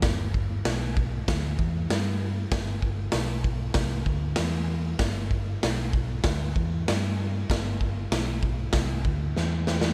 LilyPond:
<<
  \new Staff \with { instrumentName = "Picked electric bass" } { \clef bass \time 4/4 \key g \major \tempo 4 = 96 g,,4 b,,4 d,8 e,8 g,4 | g,,4 b,,4 c,8 d,8 e,4 | g,,4 b,,4 d,8 e,8 g,4 | g,,4 b,,4 c,8 d,8 e,4 | }
  \new DrumStaff \with { instrumentName = "Drums" } \drummode { \time 4/4 <hho bd sn>8 bd8 <hho sn>8 bd8 <hho bd sn>8 bd8 <hho sn>4 | <hho bd sn>8 bd8 <hho sn>8 bd8 <hho bd sn>8 bd8 <hho sn>4 | <hho bd sn>8 bd8 <hho sn>8 bd8 <hho bd sn>8 bd8 <hho sn>4 | <hho bd sn>8 bd8 <hho sn>8 bd8 <hho bd sn>8 bd8 sn8 sn16 sn16 | }
>>